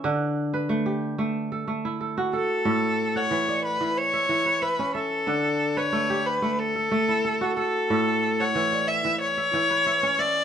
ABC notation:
X:1
M:4/4
L:1/16
Q:1/4=92
K:D
V:1 name="Violin"
z12 z2 A2- | A3 c3 B2 c4 B2 A2- | A3 c3 B2 A6 A2- | A3 c3 e2 c6 d2 |]
V:2 name="Kora"
[De]3 B2 G3 z A2 E A2 A2 | A3 f2 d3 z e2 B e2 e2 | D3 B2 G3 z A2 E A2 A2 | A3 f2 d3 z e2 B e2 e2 |]
V:3 name="Kora" clef=bass
D,2 z2 A,2 z A,2 z A,2 z F2 z | A,,2 z2 E,2 z E,2 z E,2 z C2 z | D,2 z2 A,2 z A,2 z A,2 z F2 z | A,,2 z2 E,2 z E,2 z E,2 z C2 z |]